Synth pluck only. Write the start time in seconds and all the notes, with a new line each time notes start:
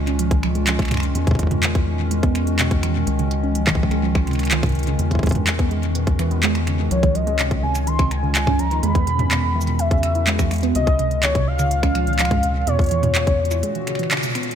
0.07 C#4
0.19 F3
0.31 D#3
0.43 F3
0.55 G#3
0.67 F3
0.91 C3
1.15 E3
1.27 B2
1.51 C#3
1.75 E4
1.87 G#3
1.99 E3
2.11 G#3
2.23 B3
2.35 G#3
2.59 B2
2.83 E3
2.95 B2
3.19 C#3
3.43 C#4
3.55 F3
3.67 D#3
3.79 F3
3.91 G#3
4.03 F3
4.27 C3
4.51 D#3
4.63 C3
4.87 C#3
5.11 E4
5.23 G#3
5.35 E3
5.47 G#3
5.59 B3
5.71 G#3
5.95 B2
6.19 E3
6.31 B3
6.43 G#3
6.67 C#3
6.79 G#3
6.91 F3
7.03 D#3
7.15 F3
7.27 G#3
7.39 C3
7.63 C3
7.87 D#3
7.99 C3
8.23 C#3
8.47 C#4
8.59 F3
8.71 D#3
8.83 G#3
8.95 B3
9.07 B2
9.31 B2
9.55 E3
9.67 B2
9.91 C#3
10.15 E4
10.27 G#3
10.39 E3
10.51 G#3
10.63 B3
10.75 C3
10.99 C3
11.23 D#3
11.35 C3
11.59 C#3
11.83 C#4
11.95 F3
12.07 D#3
12.19 F3
12.31 G#3
12.43 C3
12.67 B2
12.91 E3
13.03 B2
13.27 C#3
13.51 E4
13.63 G#3
13.75 E3
13.87 C#3
13.99 E3
14.11 C#3
14.23 B2
14.35 B3